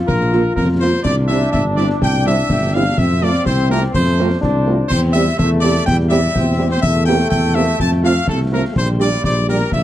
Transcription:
Already playing: F4
0.07 A#1 A#4, concert bass drum, snare
0.21 snare
0.32 A#3 F4, snare
0.56 F2 A#4, concert bass drum, snare
0.80 A#3 F4 C5
1.03 C2 D4 D5, concert bass drum, snare, crash
1.28 G3 C4 E4 E5, snare
1.41 snare
1.52 G1 E5, concert bass drum, snare
1.77 G3 C4 E4 D5, snare
1.89 snare
2.00 C2 G5, concert bass drum, snare
2.14 snare
2.26 G3 C4 E4 E5, snare
2.48 G1, concert bass drum, snare
2.74 G3 C4 E4 F5
2.97 F2 C4 E5, concert bass drum, snare
3.22 A3 C4 F4 D5, snare
3.34 snare
3.46 C2 C4 C5, concert bass drum, snare
3.70 A3 C4 F4 A#4, snare
3.82 snare
3.93 F2 A3 C5, concert bass drum, snare
4.20 A3 C4 F4
4.40 C2 D4, concert bass drum, snare
4.67 A3 C4 F4
4.89 E2 C4 C5, concert bass drum, snare, crash
5.13 G3 C4 G4 E5, snare
5.27 snare
5.38 E2 A3 E5, concert bass drum, snare
5.61 G3 C4 G4 D5, snare
5.76 snare
5.86 E2 G3 G5, concert bass drum, snare
6.00 snare
6.09 G3 C4 G4 E5, snare
6.35 E2 C4, concert bass drum, snare
6.59 G3 C4 G4
6.71 C5
6.82 E2 A3 E5, concert bass drum, snare
7.06 A#3 C4 G4 G5, snare
7.19 snare
7.30 E2 G5, concert bass drum, snare
7.55 A#3 C4 G4 E5, snare
7.67 snare
7.79 F2 A5, concert bass drum, snare
7.92 snare
8.03 A3 C4 F4 F5, snare
8.27 C2 A4, concert bass drum, snare
8.52 A3 C4 F4 A#4
8.75 A#1 G3 C5, concert bass drum, snare, crash
9.00 G3 D4 G4 D5, snare
9.12 snare
9.24 A#1 D5, concert bass drum, snare
9.48 G3 D4 G4 A#4, snare
9.61 snare
9.72 A#1 A#3 E5, concert bass drum, snare

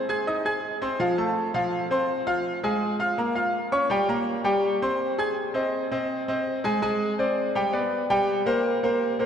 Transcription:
0.09 G#4 G#5 G#6
0.27 D#4 D#5 D#6
0.45 G#4 G#5 G#6
0.82 C4 C5 C6
1.00 F3 F4 F5
1.18 A3 A4 A5
1.54 F3 F4 F5
1.91 C4 C5 C6
2.27 F4 F5 F6
2.63 G#3 G#4 G#5
2.99 F4 F5 F6
3.18 A#3 A#4 A#5
3.35 F4 F5 F6
3.72 C#4 C#5 C#6
3.90 G3 G4 G5
4.09 A#3 A#4 A#5
4.44 G3 G4 G5
4.82 C4 C5 C6
5.18 G#4 G#5 G#6
5.54 C4 C5 D#5
5.91 C4 C5 D#5
6.28 C4 C5 D#5
6.64 G#3 G#4 G#5
6.82 G#3 G#4 G#5
7.19 C4 C5 D5
7.55 G3 G4 G5
7.73 B3 B4 D5
8.10 G3 G4 G5
8.46 A#3 A#4 C5
8.83 A#3 A#4 C5
9.19 A#3 A#4 C5

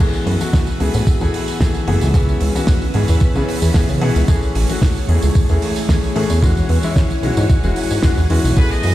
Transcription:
0.00 E3 A3 B3 F#4 G#4 E5 G#5 B5, kick, crash
0.13 tambourine
0.26 F#2, open hi-hat
0.40 E3 A3 B3 F#4, tambourine
0.53 kick, snare, tambourine
0.67 tambourine
0.79 C#2 E3 A3 B3 G#4, open hi-hat
0.94 A2, tambourine
1.07 E2, kick, tambourine
1.21 E2 E3 A3 B3 G#4, tambourine
1.34 open hi-hat
1.48 tambourine
1.60 E3 A3 B3 G#4, kick, snare, tambourine
1.74 tambourine
1.87 F#1 E3 A3 B3 G#4, open hi-hat
2.01 C#2, tambourine
2.14 E3 B3 C#4 G#4 B4, kick, tambourine
2.29 tambourine
2.41 C#2, open hi-hat
2.55 E3 B3 C#4 F#4, tambourine
2.67 kick, snare, tambourine
2.82 tambourine
2.94 G#2 E3 B3 C#4 G#4, open hi-hat
3.08 E2, tambourine
3.20 kick, tambourine
3.35 C#3 E3 B3 C#4 G#4, tambourine
3.48 open hi-hat
3.62 E2, tambourine
3.74 E3 B3 C#4 G#4, kick, snare, tambourine
3.89 C#3, tambourine
4.01 B2 E3 B3 C#4 G#4, open hi-hat
4.16 C#2, tambourine
4.28 E3 A3 C#4 G#4 C#5, kick, tambourine
4.43 tambourine
4.55 A1, open hi-hat
4.69 E3 A3 C#4 F#4, tambourine
4.82 kick, snare, tambourine
4.96 tambourine
5.08 E2 E3 A3 C#4 G#4, open hi-hat
5.22 C#2, tambourine
5.35 E2, kick, tambourine
5.49 E2 E3 A3 C#4 G#4, tambourine
5.62 open hi-hat
5.76 tambourine
5.89 E3 A3 C#4 G#4, kick, snare, tambourine
6.04 tambourine
6.15 A2 E3 A3 C#4 G#4, open hi-hat
6.30 E2, tambourine
6.42 E3 G#3 C#4 E4 F#4 F#5 G#5, kick, tambourine
6.57 tambourine
6.69 E2, open hi-hat
6.83 E3 G#3 C#4 E4, tambourine
6.96 kick, snare, tambourine
7.10 tambourine
7.23 B1 E3 G#3 C#4 F#4, open hi-hat
7.37 G#2, tambourine
7.50 kick, tambourine
7.64 E1 E3 G#3 C#4 F#4, tambourine
7.76 open hi-hat
7.91 G#2, tambourine
8.03 E3 G#3 C#4 F#4, kick, snare, tambourine
8.17 E2, tambourine
8.30 E2 E3 G#3 C#4 F#4, open hi-hat
8.44 B1, tambourine
8.56 E3 A3 B3 E4 F#4 G#4 B4 B5, kick, tambourine
8.71 D#5, tambourine
8.83 F#2, open hi-hat

